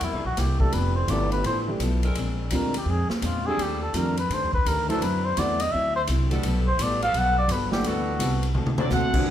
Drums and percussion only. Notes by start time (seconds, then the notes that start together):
0.01 ride
0.37 snare, hi-hat pedal, ride
0.60 kick
0.72 ride
1.08 hi-hat pedal, ride
1.32 ride
1.44 ride
1.80 hi-hat pedal, ride
2.03 ride
2.15 ride
2.50 hi-hat pedal, ride
2.74 ride
3.10 snare
3.22 hi-hat pedal, ride
3.59 ride
3.94 hi-hat pedal, ride
4.17 ride
4.31 ride
4.53 kick
4.66 hi-hat pedal, ride
4.90 ride
5.02 ride
5.37 hi-hat pedal, ride
5.60 ride
6.07 hi-hat pedal, ride
6.31 ride
6.43 ride
6.79 hi-hat pedal, ride
7.02 ride
7.14 ride
7.49 hi-hat pedal, ride
7.72 snare
7.84 ride
8.20 hi-hat pedal, ride
8.43 ride
8.55 mid tom
8.66 mid tom
8.78 mid tom
8.90 snare, hi-hat pedal
9.13 kick, crash